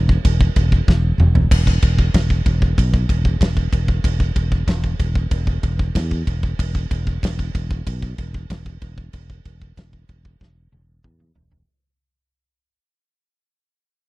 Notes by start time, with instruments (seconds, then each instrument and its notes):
Already playing: fingered electric bass E1
0.09 kick
0.25 fingered electric bass E1, kick, crash
0.41 kick
0.56 fingered electric bass E1, kick, crash
0.72 kick
0.88 fingered electric bass E1, kick, snare
1.18 fingered electric bass E1, mid tom
1.35 floor tom
1.51 fingered electric bass E1, kick, crash
1.67 kick
1.82 fingered electric bass E1, kick, crash
1.99 kick
2.14 fingered electric bass E1, kick, snare, crash
2.30 kick
2.46 fingered electric bass E1, kick, crash
2.62 kick
2.78 fingered electric bass B1, kick, crash
2.94 kick
3.09 fingered electric bass E1, kick, crash
3.25 kick
3.41 fingered electric bass E1, kick, snare, crash
3.57 kick
3.73 fingered electric bass E1, kick, crash
3.88 kick
4.04 fingered electric bass E1, kick, crash
4.20 kick
4.36 fingered electric bass E1, kick, crash
4.52 kick
4.67 fingered electric bass E1, kick, snare, crash
4.84 kick
5.00 fingered electric bass E1, kick, crash
5.15 kick
5.31 fingered electric bass E1, kick, crash
5.47 kick
5.63 fingered electric bass E1, kick, crash
5.79 kick
5.95 fingered electric bass E2, kick, snare, crash
6.11 kick
6.27 fingered electric bass E1, kick, crash
6.43 kick
6.59 fingered electric bass E1, kick, crash
6.75 kick
6.91 fingered electric bass E1, kick, crash
7.07 kick
7.23 fingered electric bass E1, kick, snare, crash
7.39 kick
7.55 fingered electric bass E1, kick, crash
7.71 kick
7.87 fingered electric bass B1, kick, crash
8.02 kick
8.18 fingered electric bass E1, kick, crash
8.34 kick
8.50 fingered electric bass E1, kick, snare, crash
8.66 kick
8.82 fingered electric bass E1, kick, crash
8.98 kick
9.13 fingered electric bass E1, kick, crash
9.30 kick
9.45 fingered electric bass E1, kick, crash
9.62 kick
9.77 fingered electric bass E1, kick, snare, crash
9.93 kick
10.09 fingered electric bass E1, kick, crash
10.25 kick
10.41 fingered electric bass E1, kick, snare
10.72 fingered electric bass E1, high tom
11.04 fingered electric bass E2, kick, mid tom
11.20 mid tom
11.35 fingered electric bass E1, floor tom
11.52 floor tom